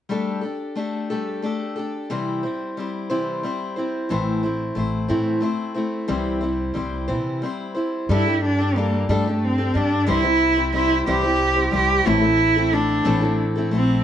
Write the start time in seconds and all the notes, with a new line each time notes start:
0.09 G3 A3 D4 G4 A4
0.41 D4 G4 A4
0.75 A3 D4 G4 A4
1.10 G3 A3 D4 G4 A4
1.42 A3 D4 G4 A4
1.76 D4 G4 A4
2.10 C3 E3 G3 C4 E4 C5
2.43 G3 C4 E4 C5
2.77 G3 C4 E4 C5
3.10 C3 E3 G3 C4 E4 C5
3.43 G3 C4 E4 C5
3.76 G3 C4 E4 C5
4.09 A1 A2 E3 A3 C4 E4 C5
4.43 A3 C4 E4 C5
4.75 A1 A3 C4 E4 C5
5.08 A2 E3 A3 C4 E4 C5
5.41 A3 C4 E4 C5
5.74 A3 C4 E4 C5
6.08 C2 C3 E3 G3 C4 E4 C5
6.41 G3 C4 E4 C5
6.74 C2 G3 C4 E4 C5
7.08 C3 E3 G3 C4 E4 C5
7.42 G3 C4 E4 C5
7.75 G3 C4 E4 C5
8.09 G2 G3 D4 E4 G4 A4
8.26 D4 G4 A4
8.45 D4
8.58 D4 G4 A4
8.76 G3 A#3 D4 G4 A4
9.09 G2 G3 A3 D4 G4 A4
9.26 D4 G4 A4
9.44 C4
9.58 D4 G4 A4
9.74 G2 G3 D4 G4 A4
10.07 C2 C3 E3 G3 C4 E4 C5
10.22 G3 C4 E4 C5
10.56 G3 C4 E4 C5
10.73 G3 C4 E4 C5
11.06 C2 C3 E3 G3 C4 E4 G4 C5
11.23 G3 C4 E4 C5
11.55 G3 C4 E4 C5
11.71 C2 G3 C4 E4 G4 C5
12.05 A1 A2 E3 A3 C4 E4 A4
12.21 A3 C4 E4 A4
12.56 A3 C4 E4 A4
12.72 A3 C4 D4 E4 A4
13.05 A1 A2 E3 A3 C4 E4 A4
13.21 A3 C4 E4 A4
13.56 A3 C4 E4 A4
13.71 A#1 A3 C4 E4 A4
13.77 C4